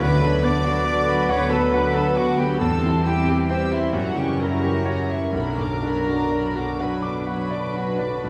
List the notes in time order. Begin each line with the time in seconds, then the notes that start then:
0.00 D2 D3 F#3 B3 D4 F#4 B4 B5 D6
0.21 D3 F#3 D4 B5
0.43 D3 B3 F#4 D5 D6
0.64 F#3 D4 F#4 B5
0.85 B4 D6
0.89 D3 F#4
1.08 F#3 D4 F#4 B5
1.29 D2 D3 B3 F#4 C#5 F#5 C#6 D6
1.50 F#3 D4 A4 A5 B5
1.73 D3 F#4 B4 F#5 B5 D6
1.95 F#3 D4 A4 B4 A5 B5
2.16 D3 F#4 F#5 D6
2.38 F#3 B3 D4 G4 G5 B5
2.59 E2 E3 G3 C4 E4 G4 A4 A5 E6
2.63 G4
2.82 E3 E4 C6
3.03 G3 E4 G4 G5 E6
3.28 E3 E4 G4 C6
3.48 G3 G4 C5 G5 E6
3.72 E3 E4 E5 C6
3.93 F#2 C#3 F#3 C#4 F#4 G4 F#5 A#5
4.16 C#3 E3 F#4 G4 G5 C#6
4.40 F#3 E4 G4 A#4 A#5
4.63 E3 F#4 G4 C#6
4.85 F#3 G4 C#5 A#5
5.10 E3 F#4 E5 C#6
5.32 B1 B2 F#3 D4 F#4 A#4 B5
5.37 F#4 A#4 A#5
5.58 F#2 D3 D4 D6
5.83 F#3 D4 F#4 B5
6.06 D3 D4 F#4 D6
6.31 F#3 F#4 D5 B5
6.55 D3 D4 F#4 D6
6.79 B1 F#3 F#4 B4 F#5 B5
7.02 D3 D4 D6
7.27 F#3 F#4 F#5 B5
7.51 D3 D4 D5 D6
7.75 F#3 F#4 B5
7.98 D3 D4 D6
8.22 B1 F#3 F#4 B5